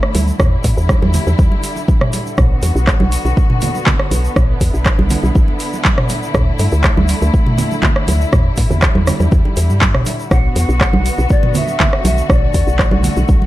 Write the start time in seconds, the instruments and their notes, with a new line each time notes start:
Already playing: string section D3 A3 E4
0.03 cross-stick
0.15 fm bass D2, open hi-hat, muted conga, high conga, shaker
0.28 shaker
0.39 fm bass E2, string section D3 G3 E4, kick, cross-stick, mid tom, muted conga, shaker
0.64 fm bass A2, kick, open hi-hat, muted conga, shaker
0.77 fm bass E2, shaker
0.89 kick, cross-stick, muted conga, shaker
1.02 fm bass E2, high conga
1.14 open hi-hat, low conga, shaker
1.27 fm bass E2, muted conga, high conga, shaker
1.39 fm bass E2, kick, high conga, shaker
1.52 muted conga
1.63 open hi-hat, shaker
1.76 muted conga, shaker
1.88 kick, high conga, shaker
2.01 cross-stick, mid tom
2.13 open hi-hat, muted conga, shaker
2.26 shaker
2.37 fm bass B1, string section B3 F#4, kick, cross-stick, mid tom, muted conga, shaker
2.63 fm bass E2, open hi-hat, muted conga, shaker
2.75 fm bass B1, shaker
2.87 kick, cross-stick, clap, muted conga, shaker
3.00 fm bass B1, high conga
3.12 open hi-hat, shaker
3.25 fm bass B1, muted conga, shaker
3.37 kick, shaker
3.50 mid tom, muted conga
3.61 open hi-hat, low conga, shaker
3.74 muted conga, shaker
3.87 kick, clap, low conga, shaker
3.99 cross-stick
4.11 fm bass B1, open hi-hat, muted conga, high conga, shaker
4.25 shaker
4.36 fm bass B1, string section E4, kick, cross-stick, mid tom, muted conga, shaker
4.61 fm bass E2, kick, open hi-hat, muted conga, shaker
4.74 fm bass B1, shaker
4.85 kick, cross-stick, clap, muted conga, shaker
4.99 fm bass B1, high conga
5.10 open hi-hat, low conga, shaker
5.23 fm bass B1, muted conga, high conga, shaker
5.35 fm bass B1, kick, high conga, shaker
5.48 muted conga
5.60 open hi-hat, shaker
5.73 muted conga, shaker
5.85 kick, clap, high conga, shaker
5.98 cross-stick, mid tom
6.09 open hi-hat, muted conga, shaker
6.23 shaker
6.34 fm bass D2, string section A3, kick, cross-stick, mid tom, muted conga, shaker
6.59 fm bass G2, open hi-hat, muted conga, shaker
6.72 fm bass D2, shaker
6.83 kick, cross-stick, clap, muted conga, shaker
6.97 fm bass D2, high conga
7.08 open hi-hat, shaker
7.22 fm bass D2, muted conga, shaker
7.34 kick, shaker
7.46 mid tom, muted conga
7.58 open hi-hat, low conga, shaker
7.71 muted conga, shaker
7.83 kick, clap, low conga, shaker
7.96 cross-stick
8.07 fm bass D2, open hi-hat, muted conga, high conga, shaker
8.21 shaker
8.33 fm bass E2, string section G3, kick, cross-stick, mid tom, muted conga, shaker
8.57 fm bass A2, kick, open hi-hat, muted conga, shaker
8.70 fm bass E2, low conga, shaker
8.82 kick, cross-stick, clap, muted conga, shaker
8.95 fm bass E2, high conga
9.07 cross-stick, open hi-hat, low conga, shaker
9.20 fm bass E2, muted conga, high conga, shaker
9.31 fm bass E2, kick, high conga, shaker
9.45 muted conga
9.57 fm bass E2, open hi-hat, shaker
9.70 fm bass G2, muted conga, shaker
9.81 kick, clap, high conga, shaker
9.94 fm bass B1, cross-stick, mid tom
10.06 open hi-hat, muted conga, shaker
10.20 shaker
10.31 fm bass B1, string section D3 B3 F#4, pan flute F#5, kick, cross-stick, mid tom, muted conga, shaker
10.56 fm bass E2, pan flute F#5, open hi-hat, muted conga, shaker
10.69 fm bass B1, shaker
10.80 kick, cross-stick, clap, muted conga, shaker
10.93 fm bass B1, high conga
11.06 open hi-hat, shaker
11.18 fm bass B1, muted conga, shaker
11.29 pan flute D5, kick, shaker
11.43 mid tom, muted conga
11.55 pan flute E5, open hi-hat, low conga, shaker
11.67 muted conga, shaker
11.80 kick, clap, low conga, shaker
11.93 cross-stick
12.04 fm bass B1, pan flute E5, open hi-hat, muted conga, high conga, shaker
12.18 shaker
12.30 fm bass B1, string section A3, pan flute D5, kick, cross-stick, mid tom, muted conga, shaker
12.54 fm bass E2, kick, open hi-hat, muted conga, shaker
12.67 fm bass B1, shaker
12.79 kick, cross-stick, clap, muted conga, shaker
12.91 fm bass B1, high conga
13.03 open hi-hat, low conga, shaker
13.16 fm bass B1, muted conga, high conga, shaker
13.28 fm bass B1, kick, high conga, shaker
13.42 muted conga